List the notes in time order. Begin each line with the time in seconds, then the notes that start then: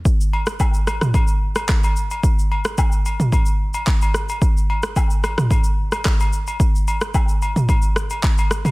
0.05 kick, shaker
0.21 shaker
0.33 high agogo
0.47 cross-stick, shaker
0.60 kick, high agogo, low woodblock, shaker
0.74 shaker
0.87 cross-stick, high agogo, shaker
1.01 cross-stick, mid tom, shaker
1.14 kick, high agogo, shaker
1.27 shaker
1.56 cross-stick, high agogo, shaker
1.68 kick, cross-stick, clap, shaker
1.83 high agogo, shaker
1.96 shaker
2.11 high agogo, shaker
2.23 kick, shaker
2.39 shaker
2.52 high agogo
2.65 cross-stick, shaker
2.78 kick, high agogo, low woodblock, shaker
2.92 shaker
3.06 high agogo, shaker
3.20 mid tom, shaker
3.32 kick, high agogo, shaker
3.46 shaker
3.74 high agogo, shaker
3.86 kick, clap, shaker
4.02 high agogo, shaker
4.14 cross-stick, shaker
4.29 high agogo, shaker
4.42 kick, shaker
4.57 shaker
4.70 high agogo
4.83 cross-stick, shaker
4.96 kick, high agogo, low woodblock, shaker
5.10 shaker
5.24 cross-stick, high agogo, shaker
5.38 cross-stick, mid tom, shaker
5.51 kick, high agogo, shaker
5.64 shaker
5.92 cross-stick, high agogo, shaker
6.05 kick, cross-stick, clap, shaker
6.20 high agogo, shaker
6.33 shaker
6.47 high agogo, shaker
6.60 kick, shaker
6.75 shaker
6.88 high agogo, shaker
7.01 cross-stick, shaker
7.14 kick, high agogo, low woodblock, shaker
7.28 shaker
7.42 high agogo, shaker
7.56 mid tom, shaker
7.69 kick, high agogo, shaker
7.82 shaker
7.96 cross-stick, shaker
8.10 high agogo, shaker
8.23 kick, clap, shaker
8.38 high agogo, shaker
8.51 cross-stick, shaker
8.65 mid tom, high agogo, shaker